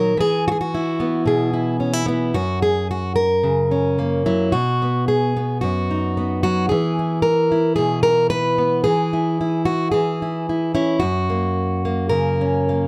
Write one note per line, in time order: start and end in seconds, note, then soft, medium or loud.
0.00 0.16 A#2 medium
0.00 0.15 D#3 medium
0.00 0.15 F#3 medium
0.00 0.19 D#4 soft
0.00 0.20 A#4 medium
0.17 2.35 E3 medium
0.17 0.47 G#4 loud
0.48 0.51 F#4 medium
0.48 0.59 G#4 medium
0.61 1.27 F#4 medium
0.75 1.52 E4 medium
1.00 2.05 B3 soft
1.26 2.35 B2 medium
1.26 2.34 G#4 medium
1.54 1.80 E4 soft
1.80 1.93 C#4 soft
1.93 2.07 E4 soft
2.06 2.31 B3 medium
2.06 2.35 E4 medium
2.34 4.54 F#2 medium
2.34 2.62 F#4 medium
2.62 2.90 G#4 medium
2.91 3.15 F#4 medium
3.16 4.52 A#4 medium
3.43 4.26 C#3 medium
3.71 4.25 C#4 soft
3.99 4.51 A#3 soft
4.26 4.51 F#3 medium
4.26 4.54 E4 medium
4.52 5.63 B2 medium
4.52 5.08 F#4 medium
4.82 5.36 B3 soft
5.08 5.61 G#4 medium
5.37 6.16 B3 soft
5.61 6.72 F#2 soft
5.61 6.42 F#4 medium
5.91 6.69 D#4 soft
6.17 6.69 B3 soft
6.43 6.69 F#3 medium
6.43 6.69 F#4 medium
6.69 8.84 E3 medium
6.69 7.22 G#4 medium
6.99 7.51 E4 soft
7.22 7.75 A#4 medium
7.52 8.83 E4 soft
7.76 8.86 B2 soft
7.76 8.02 G#4 medium
8.03 8.30 A#4 loud
8.30 8.83 B4 loud
8.58 8.82 B3 medium
8.84 9.92 E3 medium
8.84 9.65 G#4 loud
9.13 9.39 E4 soft
9.41 10.21 E4 soft
9.65 9.91 F#4 loud
9.92 11.02 E3 medium
9.92 10.99 G#4 medium
10.22 10.48 E4 soft
10.49 10.73 E4 soft
10.75 10.98 C#4 medium
10.75 11.02 E4 medium
11.00 12.88 F#2 medium
11.00 12.09 F#4 medium
11.30 11.84 A#3 soft
11.85 12.68 A#3 soft
12.09 12.88 C#3 medium
12.09 12.88 A#4 medium
12.41 12.88 C#4 soft
12.69 12.88 A#3 soft